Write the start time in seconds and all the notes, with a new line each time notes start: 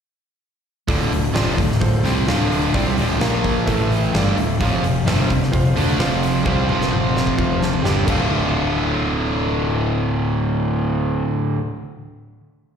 0.88 D1 D2 A2 D3 F4 A4 D5, kick, open hi-hat
1.11 D1 D2 A2, open hi-hat
1.34 F1 F2 C3 F3 F4 A4 D5, snare, open hi-hat
1.58 D1 D2 A2, kick, open hi-hat
1.71 snare
1.81 D1 D2 A2 F4 A4 C5, kick, open hi-hat
2.03 C2 C3 G3 C4, snare, open hi-hat
2.27 D1 D2 A2 D3 F4 A4 F5, snare, open hi-hat
2.52 open hi-hat
2.74 C2 C3 G3 C4 F4 A4 D5, kick, open hi-hat
2.97 D1 D2 A2 D3, open hi-hat
3.21 A#1 A#2 F3 A#3 F4 A#4 F5, snare, open hi-hat
3.42 A#5, kick, open hi-hat
3.66 A1 A2 E3 A3 E4 A4 E5 A5, kick, open hi-hat
3.92 open hi-hat
4.03 G5
4.13 G1 G2 D3 G3 F4 A4 D5 F5, snare, open hi-hat
4.36 D1 D2 A2 E5, open hi-hat
4.61 F1 F2 C3 F3 F4 C5 F5, kick, open hi-hat
4.83 F1 F2 C3, open hi-hat
5.06 G1 G2 D3 G3 F4 C5 E5, snare, open hi-hat
5.30 F1 F2 C3, kick, open hi-hat
5.43 snare
5.52 F1 F2 C3 F4 C5 F5, kick, open hi-hat
5.75 D2 D3 A3 D4, open hi-hat
5.98 F1 F2 C3 F3 F4 C5 F5, snare, open hi-hat
6.23 open hi-hat
6.45 C2 C3 G3 C4 F4 C5 F5, kick, high tom
6.68 F1 F2 C3 F3, high tom
6.81 snare
6.92 F4 C5 F5, mid tom
7.17 snare
7.27 kick
7.37 F4 C5 F5, kick, mid tom
7.60 A5, snare
7.74 mid tom
7.83 G1 G2 D3 G3 G4 D5 G5, snare
8.05 D1 D2 A2 D3 A3 A4 D5 F5, kick, crash
8.10 F4